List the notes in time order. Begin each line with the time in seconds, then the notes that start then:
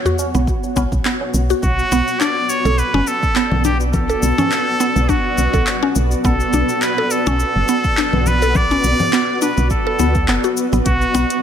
Already playing: B3 F#4 C#5 F#5
0.05 F#4, tabla ge, cabasa
0.19 tabla na, tabla tin, cabasa
0.35 B1 B3, cabasa
0.47 kick, cabasa
0.63 tabla tin, cabasa
0.76 B1 B3, kick, tabla na, cabasa
0.92 B1, kick, cabasa
1.05 B3, clap, cabasa
1.21 tabla tin
1.34 B1, cabasa
1.49 F#4, tabla tin, cabasa
1.63 B1 B3 F#4 B4 D5, kick, cabasa
1.79 cabasa
1.92 B1 B3, cabasa
2.08 cabasa
2.20 D4 D5, clap, cabasa
2.49 C#5, cabasa
2.65 B1 A4, cabasa
2.78 B4, cabasa
2.94 F#1 C#4
3.07 A4, cabasa
3.23 kick, cabasa
3.36 B3, clap, cabasa
3.51 B1, low conga
3.64 D4 G4, low conga, cabasa
3.80 cabasa
3.94 A4, kick, low conga, cabasa
4.09 A4, cabasa
4.22 B1, cabasa
4.38 C#4, low conga, cabasa
4.52 clap, cabasa
4.80 B3, cabasa
4.96 B1, cabasa
5.09 D4 F#4, kick, cabasa
5.38 B1, cabasa
5.54 B1 A4, kick, cabasa
5.67 clap, cabasa
5.83 C#4
5.96 B1, cabasa
6.11 cabasa
6.24 B1 B3 A4, kick, cabasa
6.40 cabasa
6.53 B1 D4, cabasa
6.69 cabasa
6.82 B4, clap, cabasa
6.98 A4
7.11 A4, cabasa
7.27 B1 C#4, cabasa
7.40 cabasa
7.56 F#1
7.68 B3, cabasa
7.84 kick, cabasa
7.97 D4, clap, cabasa
8.13 B1, low conga
8.26 B4, low conga, cabasa
8.42 A4, cabasa
8.55 D5, kick, low conga, cabasa
8.71 C#4, cabasa
8.84 B1, cabasa
9.00 low conga, cabasa
9.13 B3, clap, cabasa
9.42 D4 B4, cabasa
9.57 B1, cabasa
9.70 A4, kick, cabasa
9.87 A4
9.99 D2 B3, cabasa
10.15 kick, cabasa
10.28 F#1 B3, clap, cabasa
10.44 F#4, cabasa
10.57 cabasa
10.73 A1 B3, cabasa
10.86 B1 F#4 F#5, kick, closed hi-hat, cabasa
11.02 cabasa
11.14 B1 B3, closed hi-hat, cabasa
11.30 closed hi-hat, cabasa